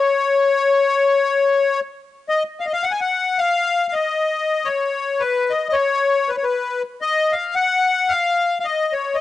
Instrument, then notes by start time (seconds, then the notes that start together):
accordion
Already playing: C#5
2.29 D#5
2.60 F5
2.66 D#5
2.73 F5
2.83 F#5
2.91 G#5
3.01 F#5
3.38 F5
3.88 F5
3.93 D#5
4.65 C#5
5.20 B4
5.50 D#5
5.69 C#5 D#5
6.29 B4
6.37 C#5
6.44 B4
7.01 D#5
7.32 F5
7.55 F#5
8.09 F5
8.60 F5
8.65 D#5
8.93 C#5
9.14 D#5